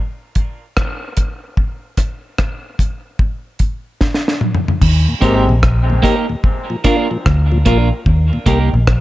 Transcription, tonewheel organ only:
5.08 5.15 D#2 medium
5.08 5.15 A#2 medium
5.23 5.34 A#3 medium
5.23 5.35 D#4 medium
5.23 5.35 G4 medium
5.49 5.55 D#2 medium
5.49 5.55 A#2 medium
5.90 5.96 D#2 medium
5.90 5.96 A#2 medium
6.04 6.16 A#3 medium
6.04 6.16 D#4 medium
6.04 6.16 G4 medium
6.29 6.36 D#2 medium
6.29 6.36 A#2 medium
6.70 6.77 A#2 medium
6.70 6.77 F3 medium
6.85 6.96 A#3 medium
6.85 6.97 D4 medium
6.85 6.97 F4 medium
7.11 7.17 A#2 medium
7.11 7.17 F3 medium
7.52 7.58 A#2 medium
7.52 7.58 F3 medium
7.66 7.78 A#3 medium
7.66 7.78 D4 medium
7.66 7.78 F4 medium
8.33 8.39 D#2 medium
8.33 8.39 A#2 medium
8.48 8.59 A#3 medium
8.48 8.59 D#4 medium
8.48 8.59 G4 medium
8.74 8.80 D#2 medium
8.74 8.80 A#2 medium

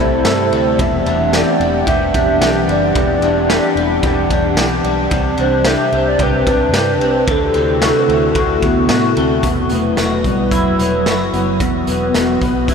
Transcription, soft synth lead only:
0.00 0.82 C5 loud
0.81 1.37 E5 loud
1.36 1.88 D5 loud
1.89 2.65 E5 loud
2.71 4.28 D5 medium
5.40 5.69 C5 loud
5.67 6.07 E5 loud
6.08 6.24 D5 loud
6.22 7.32 B4 loud
7.31 8.64 A4 loud
8.65 9.14 B3 loud
9.18 9.47 C4 medium
9.45 9.72 B3 loud
9.72 10.26 A3 loud
10.25 10.55 G3 medium
10.53 11.63 F#3 loud
11.62 12.74 B3 loud

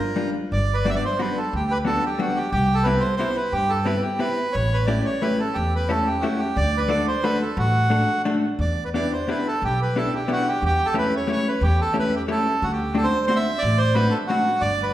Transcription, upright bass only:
0.52 0.96 G1 medium
1.53 1.96 D2 medium
2.52 2.96 C2 loud
3.53 3.97 G2 medium
4.55 4.99 A1 loud
5.56 6.00 E2 medium
6.57 7.00 D2 loud
7.57 8.01 A1 loud
8.59 9.04 E2 medium
9.62 10.06 B1 medium
10.62 11.05 E2 medium
11.61 12.05 E2 medium
12.62 13.06 D2 medium
13.63 14.06 A1 medium
14.61 14.94 G1 medium

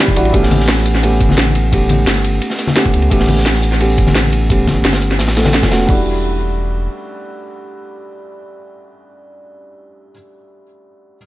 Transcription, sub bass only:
0.17 0.32 A1 loud
0.34 2.06 A1 loud
2.07 2.40 G1 medium
2.94 3.09 C#2 loud
3.11 4.83 A1 loud
4.85 5.21 G1 medium
5.19 5.65 A1 medium
5.63 5.71 E1 medium
5.71 5.87 E1 loud
5.89 6.89 E1 medium

